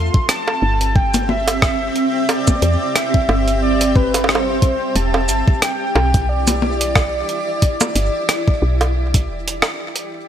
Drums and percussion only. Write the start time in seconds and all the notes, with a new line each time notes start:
0.14 kick
0.29 cross-stick, closed hi-hat
0.48 high bongo
0.81 closed hi-hat
0.96 kick
1.14 closed hi-hat, high tom, shaker
1.29 high tom
1.48 closed hi-hat, high bongo
1.62 kick, cross-stick
1.96 closed hi-hat
2.29 closed hi-hat, high bongo
2.48 kick, high tom, shaker
2.62 closed hi-hat
2.96 cross-stick, closed hi-hat
3.14 kick
3.29 high bongo
3.48 closed hi-hat
3.81 closed hi-hat
3.96 kick
4.14 closed hi-hat, high bongo
4.24 high bongo
4.29 cross-stick
4.35 high bongo
4.62 kick, closed hi-hat
4.96 closed hi-hat
5.14 high bongo
5.29 closed hi-hat, shaker
5.48 kick
5.62 cross-stick, closed hi-hat
5.95 high bongo
6.14 kick, closed hi-hat
6.47 closed hi-hat, high tom, shaker
6.62 high tom
6.81 closed hi-hat
6.96 kick, cross-stick, high bongo
7.29 closed hi-hat
7.62 kick, closed hi-hat
7.81 high tom, high bongo, shaker
7.96 closed hi-hat
8.29 cross-stick, closed hi-hat
8.48 kick
8.81 closed hi-hat, high bongo
9.14 kick, closed hi-hat
9.48 closed hi-hat
9.62 cross-stick, high bongo
9.96 closed hi-hat